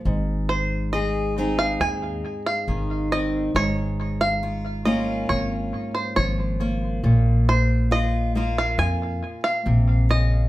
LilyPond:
<<
  \new Staff \with { instrumentName = "Five-string banjo" } { \time 4/4 \key aes \major \tempo 4 = 69 r8 c''8 ees''8. f''16 aes''8. f''8. ees''8 | des''8. f''8. ees''8 des''8. c''16 des''8. r16 | r8 c''8 ees''8. f''16 aes''8. f''8. ees''8 | }
  \new Staff \with { instrumentName = "Steel-string acoustic guitar" } { \time 4/4 \key aes \major << { r4 aes'8 <c' ees' aes'>2 c'8 | r4 f'8 <bes des' f'>2 bes8 | r4 f'8 <bes f'>2~ <bes f'>8 | } \\ { aes,2. ees4 | aes,2. f4 | bes,2. c8 des8 | } >> }
  \new Staff \with { instrumentName = "Upright bass" } { \clef bass \time 4/4 \key aes \major aes,,2 ees,8 r8 aes,,4 | aes,,2 aes,,8 r8 aes,,4 | bes,,2 f,8 r8 bes,,4 | }
>>